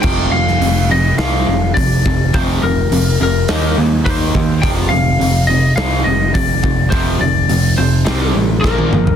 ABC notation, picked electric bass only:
X:1
M:4/4
L:1/8
Q:1/4=105
K:Eb
V:1 name="Picked electric bass" clef=bass
F,,, F,,, F,,,2 C,, F,,, F,,, F,,, | F,,, F,,, F,,, F,,, E,, E,, E,, E,, | F,,, F,,, F,,,2 C,, F,,, F,,, F,,, | F,,, F,,, F,,, F,,, C,, =A,,, B,,, G,,, |]